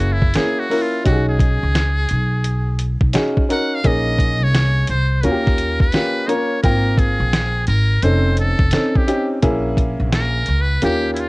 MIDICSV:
0, 0, Header, 1, 5, 480
1, 0, Start_track
1, 0, Tempo, 697674
1, 728, Time_signature, 4, 2, 24, 8
1, 7765, End_track
2, 0, Start_track
2, 0, Title_t, "Muted trumpet"
2, 0, Program_c, 0, 59
2, 0, Note_on_c, 0, 66, 84
2, 85, Note_on_c, 0, 64, 88
2, 95, Note_off_c, 0, 66, 0
2, 248, Note_on_c, 0, 68, 87
2, 258, Note_off_c, 0, 64, 0
2, 407, Note_on_c, 0, 66, 83
2, 418, Note_off_c, 0, 68, 0
2, 563, Note_on_c, 0, 65, 80
2, 573, Note_off_c, 0, 66, 0
2, 726, Note_off_c, 0, 65, 0
2, 729, Note_on_c, 0, 66, 86
2, 877, Note_off_c, 0, 66, 0
2, 888, Note_on_c, 0, 68, 88
2, 2061, Note_off_c, 0, 68, 0
2, 2423, Note_on_c, 0, 78, 98
2, 2577, Note_on_c, 0, 77, 100
2, 2588, Note_off_c, 0, 78, 0
2, 2661, Note_on_c, 0, 75, 106
2, 2671, Note_off_c, 0, 77, 0
2, 3051, Note_on_c, 0, 73, 111
2, 3062, Note_off_c, 0, 75, 0
2, 3366, Note_off_c, 0, 73, 0
2, 3370, Note_on_c, 0, 72, 99
2, 3586, Note_on_c, 0, 71, 74
2, 3596, Note_off_c, 0, 72, 0
2, 3611, Note_on_c, 0, 70, 100
2, 3621, Note_off_c, 0, 71, 0
2, 3994, Note_off_c, 0, 70, 0
2, 3998, Note_on_c, 0, 71, 104
2, 4302, Note_on_c, 0, 75, 66
2, 4312, Note_off_c, 0, 71, 0
2, 4320, Note_on_c, 0, 73, 94
2, 4331, Note_off_c, 0, 75, 0
2, 4559, Note_off_c, 0, 73, 0
2, 4563, Note_on_c, 0, 70, 93
2, 4809, Note_on_c, 0, 68, 101
2, 4819, Note_off_c, 0, 70, 0
2, 5281, Note_off_c, 0, 68, 0
2, 5285, Note_on_c, 0, 70, 95
2, 5525, Note_on_c, 0, 72, 97
2, 5535, Note_off_c, 0, 70, 0
2, 5767, Note_off_c, 0, 72, 0
2, 5778, Note_on_c, 0, 69, 94
2, 6170, Note_on_c, 0, 67, 75
2, 6181, Note_off_c, 0, 69, 0
2, 6404, Note_off_c, 0, 67, 0
2, 6974, Note_on_c, 0, 70, 101
2, 7303, Note_on_c, 0, 71, 112
2, 7313, Note_off_c, 0, 70, 0
2, 7455, Note_off_c, 0, 71, 0
2, 7462, Note_on_c, 0, 67, 101
2, 7646, Note_off_c, 0, 67, 0
2, 7661, Note_on_c, 0, 64, 64
2, 7706, Note_on_c, 0, 65, 100
2, 7717, Note_off_c, 0, 64, 0
2, 7765, Note_off_c, 0, 65, 0
2, 7765, End_track
3, 0, Start_track
3, 0, Title_t, "Upright piano"
3, 0, Program_c, 1, 0
3, 0, Note_on_c, 1, 58, 74
3, 0, Note_on_c, 1, 61, 69
3, 0, Note_on_c, 1, 64, 70
3, 0, Note_on_c, 1, 68, 89
3, 176, Note_off_c, 1, 58, 0
3, 177, Note_off_c, 1, 61, 0
3, 179, Note_off_c, 1, 64, 0
3, 179, Note_off_c, 1, 68, 0
3, 240, Note_on_c, 1, 58, 70
3, 245, Note_on_c, 1, 61, 60
3, 246, Note_on_c, 1, 64, 62
3, 248, Note_on_c, 1, 68, 74
3, 440, Note_off_c, 1, 58, 0
3, 442, Note_off_c, 1, 61, 0
3, 443, Note_off_c, 1, 64, 0
3, 444, Note_off_c, 1, 68, 0
3, 479, Note_on_c, 1, 58, 72
3, 485, Note_on_c, 1, 61, 68
3, 487, Note_on_c, 1, 64, 65
3, 490, Note_on_c, 1, 70, 78
3, 680, Note_off_c, 1, 58, 0
3, 682, Note_off_c, 1, 61, 0
3, 684, Note_off_c, 1, 64, 0
3, 685, Note_off_c, 1, 70, 0
3, 716, Note_on_c, 1, 61, 74
3, 718, Note_on_c, 1, 63, 68
3, 723, Note_on_c, 1, 66, 66
3, 727, Note_on_c, 1, 67, 66
3, 770, Note_on_c, 1, 68, 85
3, 783, Note_off_c, 1, 67, 0
3, 1448, Note_off_c, 1, 61, 0
3, 1449, Note_off_c, 1, 63, 0
3, 1451, Note_off_c, 1, 66, 0
3, 1475, Note_off_c, 1, 68, 0
3, 2158, Note_on_c, 1, 61, 87
3, 2161, Note_on_c, 1, 63, 75
3, 2165, Note_on_c, 1, 66, 78
3, 2168, Note_on_c, 1, 68, 94
3, 2359, Note_off_c, 1, 61, 0
3, 2361, Note_off_c, 1, 63, 0
3, 2362, Note_off_c, 1, 66, 0
3, 2364, Note_off_c, 1, 68, 0
3, 2401, Note_on_c, 1, 61, 76
3, 2405, Note_on_c, 1, 63, 68
3, 2409, Note_on_c, 1, 66, 63
3, 2410, Note_on_c, 1, 70, 81
3, 2601, Note_off_c, 1, 61, 0
3, 2603, Note_off_c, 1, 63, 0
3, 2604, Note_off_c, 1, 66, 0
3, 2605, Note_off_c, 1, 70, 0
3, 2640, Note_on_c, 1, 58, 80
3, 2643, Note_on_c, 1, 61, 68
3, 2643, Note_on_c, 1, 63, 71
3, 2647, Note_on_c, 1, 68, 87
3, 3370, Note_off_c, 1, 58, 0
3, 3371, Note_off_c, 1, 61, 0
3, 3372, Note_off_c, 1, 63, 0
3, 3373, Note_off_c, 1, 68, 0
3, 3601, Note_on_c, 1, 58, 77
3, 3603, Note_on_c, 1, 61, 73
3, 3607, Note_on_c, 1, 65, 70
3, 3611, Note_on_c, 1, 66, 65
3, 3656, Note_on_c, 1, 67, 89
3, 3666, Note_off_c, 1, 66, 0
3, 4013, Note_off_c, 1, 58, 0
3, 4014, Note_off_c, 1, 61, 0
3, 4016, Note_off_c, 1, 65, 0
3, 4040, Note_off_c, 1, 67, 0
3, 4081, Note_on_c, 1, 58, 69
3, 4084, Note_on_c, 1, 61, 66
3, 4088, Note_on_c, 1, 65, 65
3, 4089, Note_on_c, 1, 67, 76
3, 4281, Note_off_c, 1, 58, 0
3, 4282, Note_off_c, 1, 61, 0
3, 4284, Note_off_c, 1, 65, 0
3, 4284, Note_off_c, 1, 67, 0
3, 4319, Note_on_c, 1, 58, 72
3, 4320, Note_on_c, 1, 61, 69
3, 4322, Note_on_c, 1, 65, 65
3, 4327, Note_on_c, 1, 70, 83
3, 4519, Note_off_c, 1, 58, 0
3, 4520, Note_off_c, 1, 61, 0
3, 4521, Note_off_c, 1, 65, 0
3, 4523, Note_off_c, 1, 70, 0
3, 4564, Note_on_c, 1, 58, 76
3, 4565, Note_on_c, 1, 60, 74
3, 4569, Note_on_c, 1, 65, 71
3, 4572, Note_on_c, 1, 79, 83
3, 5292, Note_off_c, 1, 58, 0
3, 5293, Note_off_c, 1, 60, 0
3, 5294, Note_off_c, 1, 65, 0
3, 5296, Note_off_c, 1, 79, 0
3, 5526, Note_on_c, 1, 60, 81
3, 5529, Note_on_c, 1, 61, 69
3, 5533, Note_on_c, 1, 63, 69
3, 5536, Note_on_c, 1, 69, 88
3, 5935, Note_off_c, 1, 60, 0
3, 5937, Note_off_c, 1, 61, 0
3, 5939, Note_off_c, 1, 63, 0
3, 5940, Note_off_c, 1, 69, 0
3, 6004, Note_on_c, 1, 60, 74
3, 6007, Note_on_c, 1, 61, 65
3, 6010, Note_on_c, 1, 63, 67
3, 6014, Note_on_c, 1, 69, 78
3, 6202, Note_off_c, 1, 60, 0
3, 6204, Note_off_c, 1, 61, 0
3, 6205, Note_off_c, 1, 63, 0
3, 6207, Note_off_c, 1, 69, 0
3, 6238, Note_on_c, 1, 60, 81
3, 6243, Note_on_c, 1, 61, 74
3, 6244, Note_on_c, 1, 63, 70
3, 6246, Note_on_c, 1, 67, 87
3, 6439, Note_off_c, 1, 60, 0
3, 6442, Note_off_c, 1, 61, 0
3, 6442, Note_off_c, 1, 63, 0
3, 6443, Note_off_c, 1, 67, 0
3, 6482, Note_on_c, 1, 58, 94
3, 6483, Note_on_c, 1, 61, 87
3, 6487, Note_on_c, 1, 64, 89
3, 6490, Note_on_c, 1, 68, 104
3, 7211, Note_off_c, 1, 58, 0
3, 7211, Note_off_c, 1, 61, 0
3, 7213, Note_off_c, 1, 64, 0
3, 7215, Note_off_c, 1, 68, 0
3, 7444, Note_on_c, 1, 58, 79
3, 7447, Note_on_c, 1, 61, 74
3, 7449, Note_on_c, 1, 65, 75
3, 7453, Note_on_c, 1, 67, 91
3, 7765, Note_off_c, 1, 58, 0
3, 7765, Note_off_c, 1, 61, 0
3, 7765, Note_off_c, 1, 65, 0
3, 7765, Note_off_c, 1, 67, 0
3, 7765, End_track
4, 0, Start_track
4, 0, Title_t, "Upright bass"
4, 0, Program_c, 2, 32
4, 0, Note_on_c, 2, 30, 106
4, 221, Note_off_c, 2, 30, 0
4, 729, Note_on_c, 2, 35, 106
4, 1092, Note_off_c, 2, 35, 0
4, 1122, Note_on_c, 2, 37, 93
4, 1423, Note_off_c, 2, 37, 0
4, 1450, Note_on_c, 2, 35, 90
4, 2052, Note_off_c, 2, 35, 0
4, 2073, Note_on_c, 2, 35, 82
4, 2157, Note_off_c, 2, 35, 0
4, 2646, Note_on_c, 2, 34, 99
4, 3034, Note_off_c, 2, 34, 0
4, 3034, Note_on_c, 2, 36, 95
4, 3338, Note_off_c, 2, 36, 0
4, 3366, Note_on_c, 2, 36, 82
4, 3586, Note_off_c, 2, 36, 0
4, 3607, Note_on_c, 2, 39, 110
4, 4060, Note_off_c, 2, 39, 0
4, 4568, Note_on_c, 2, 32, 97
4, 4931, Note_off_c, 2, 32, 0
4, 4952, Note_on_c, 2, 34, 96
4, 5258, Note_off_c, 2, 34, 0
4, 5284, Note_on_c, 2, 32, 105
4, 5505, Note_off_c, 2, 32, 0
4, 5524, Note_on_c, 2, 29, 104
4, 5889, Note_off_c, 2, 29, 0
4, 5914, Note_on_c, 2, 29, 94
4, 5998, Note_off_c, 2, 29, 0
4, 6486, Note_on_c, 2, 34, 99
4, 6850, Note_off_c, 2, 34, 0
4, 6877, Note_on_c, 2, 34, 104
4, 7180, Note_off_c, 2, 34, 0
4, 7212, Note_on_c, 2, 37, 98
4, 7430, Note_off_c, 2, 37, 0
4, 7451, Note_on_c, 2, 39, 111
4, 7765, Note_off_c, 2, 39, 0
4, 7765, End_track
5, 0, Start_track
5, 0, Title_t, "Drums"
5, 0, Note_on_c, 9, 42, 72
5, 65, Note_off_c, 9, 42, 0
5, 151, Note_on_c, 9, 36, 94
5, 219, Note_off_c, 9, 36, 0
5, 232, Note_on_c, 9, 42, 94
5, 244, Note_on_c, 9, 38, 108
5, 301, Note_off_c, 9, 42, 0
5, 313, Note_off_c, 9, 38, 0
5, 491, Note_on_c, 9, 46, 54
5, 560, Note_off_c, 9, 46, 0
5, 726, Note_on_c, 9, 36, 97
5, 726, Note_on_c, 9, 42, 85
5, 794, Note_off_c, 9, 42, 0
5, 795, Note_off_c, 9, 36, 0
5, 959, Note_on_c, 9, 36, 89
5, 966, Note_on_c, 9, 42, 69
5, 1028, Note_off_c, 9, 36, 0
5, 1035, Note_off_c, 9, 42, 0
5, 1205, Note_on_c, 9, 38, 121
5, 1206, Note_on_c, 9, 42, 91
5, 1274, Note_off_c, 9, 38, 0
5, 1274, Note_off_c, 9, 42, 0
5, 1437, Note_on_c, 9, 42, 75
5, 1505, Note_off_c, 9, 42, 0
5, 1682, Note_on_c, 9, 42, 89
5, 1750, Note_off_c, 9, 42, 0
5, 1919, Note_on_c, 9, 42, 78
5, 1988, Note_off_c, 9, 42, 0
5, 2070, Note_on_c, 9, 36, 93
5, 2139, Note_off_c, 9, 36, 0
5, 2156, Note_on_c, 9, 42, 105
5, 2168, Note_on_c, 9, 38, 120
5, 2225, Note_off_c, 9, 42, 0
5, 2237, Note_off_c, 9, 38, 0
5, 2320, Note_on_c, 9, 36, 91
5, 2389, Note_off_c, 9, 36, 0
5, 2410, Note_on_c, 9, 42, 76
5, 2479, Note_off_c, 9, 42, 0
5, 2643, Note_on_c, 9, 42, 82
5, 2646, Note_on_c, 9, 36, 102
5, 2712, Note_off_c, 9, 42, 0
5, 2715, Note_off_c, 9, 36, 0
5, 2879, Note_on_c, 9, 36, 86
5, 2889, Note_on_c, 9, 42, 67
5, 2948, Note_off_c, 9, 36, 0
5, 2958, Note_off_c, 9, 42, 0
5, 3127, Note_on_c, 9, 38, 119
5, 3128, Note_on_c, 9, 42, 91
5, 3196, Note_off_c, 9, 38, 0
5, 3197, Note_off_c, 9, 42, 0
5, 3353, Note_on_c, 9, 42, 71
5, 3422, Note_off_c, 9, 42, 0
5, 3600, Note_on_c, 9, 42, 85
5, 3669, Note_off_c, 9, 42, 0
5, 3760, Note_on_c, 9, 38, 35
5, 3764, Note_on_c, 9, 36, 87
5, 3829, Note_off_c, 9, 38, 0
5, 3833, Note_off_c, 9, 36, 0
5, 3840, Note_on_c, 9, 42, 78
5, 3909, Note_off_c, 9, 42, 0
5, 3990, Note_on_c, 9, 36, 99
5, 4059, Note_off_c, 9, 36, 0
5, 4074, Note_on_c, 9, 42, 102
5, 4087, Note_on_c, 9, 38, 115
5, 4143, Note_off_c, 9, 42, 0
5, 4155, Note_off_c, 9, 38, 0
5, 4327, Note_on_c, 9, 42, 76
5, 4396, Note_off_c, 9, 42, 0
5, 4565, Note_on_c, 9, 42, 89
5, 4566, Note_on_c, 9, 36, 104
5, 4634, Note_off_c, 9, 42, 0
5, 4635, Note_off_c, 9, 36, 0
5, 4799, Note_on_c, 9, 36, 90
5, 4806, Note_on_c, 9, 42, 68
5, 4868, Note_off_c, 9, 36, 0
5, 4875, Note_off_c, 9, 42, 0
5, 5045, Note_on_c, 9, 38, 127
5, 5046, Note_on_c, 9, 42, 84
5, 5114, Note_off_c, 9, 38, 0
5, 5115, Note_off_c, 9, 42, 0
5, 5277, Note_on_c, 9, 42, 76
5, 5345, Note_off_c, 9, 42, 0
5, 5521, Note_on_c, 9, 42, 85
5, 5590, Note_off_c, 9, 42, 0
5, 5759, Note_on_c, 9, 42, 79
5, 5828, Note_off_c, 9, 42, 0
5, 5911, Note_on_c, 9, 36, 92
5, 5979, Note_off_c, 9, 36, 0
5, 5993, Note_on_c, 9, 42, 107
5, 6005, Note_on_c, 9, 38, 112
5, 6062, Note_off_c, 9, 42, 0
5, 6074, Note_off_c, 9, 38, 0
5, 6160, Note_on_c, 9, 36, 95
5, 6229, Note_off_c, 9, 36, 0
5, 6247, Note_on_c, 9, 42, 77
5, 6316, Note_off_c, 9, 42, 0
5, 6484, Note_on_c, 9, 42, 86
5, 6487, Note_on_c, 9, 36, 102
5, 6553, Note_off_c, 9, 42, 0
5, 6556, Note_off_c, 9, 36, 0
5, 6722, Note_on_c, 9, 36, 85
5, 6727, Note_on_c, 9, 42, 68
5, 6790, Note_off_c, 9, 36, 0
5, 6796, Note_off_c, 9, 42, 0
5, 6966, Note_on_c, 9, 38, 127
5, 6967, Note_on_c, 9, 42, 85
5, 7035, Note_off_c, 9, 38, 0
5, 7035, Note_off_c, 9, 42, 0
5, 7197, Note_on_c, 9, 42, 73
5, 7265, Note_off_c, 9, 42, 0
5, 7443, Note_on_c, 9, 42, 91
5, 7512, Note_off_c, 9, 42, 0
5, 7681, Note_on_c, 9, 42, 79
5, 7750, Note_off_c, 9, 42, 0
5, 7765, End_track
0, 0, End_of_file